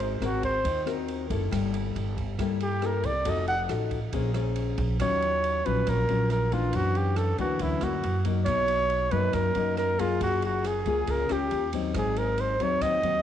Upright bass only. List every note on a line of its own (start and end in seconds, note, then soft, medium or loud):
0.00 0.18 G#1 loud
0.20 0.61 G#1 medium
0.65 1.26 D#2 medium
1.30 1.50 F#1 loud
1.52 1.92 G1 loud
1.96 2.36 G1 medium
2.38 3.00 G2 medium
3.03 3.24 C2 loud
3.25 3.66 F1 loud
3.69 4.10 A1 medium
4.13 4.74 A#1 medium
4.78 4.98 A#1 loud
5.00 5.61 D#2 loud
5.66 5.85 A#1 loud
5.87 6.07 A#1 loud
6.09 6.70 A#1 loud
6.73 7.34 F#2 loud
7.38 7.58 D2 loud
7.59 7.80 D2 loud
7.81 8.02 D2 loud
8.04 8.44 F#2 loud
8.47 9.08 B1 medium
9.12 9.32 F#2 loud
9.34 9.54 F#2 loud
9.55 10.16 F#2 loud
10.21 10.82 F#1 loud
10.86 11.06 C#2 medium
11.08 11.28 C#2 loud
11.30 11.50 C#2 medium
11.52 11.92 D#2 loud
11.95 12.56 G#1 loud
12.59 12.80 D#2 medium
12.81 13.01 D#2 medium
13.02 13.22 D#2 loud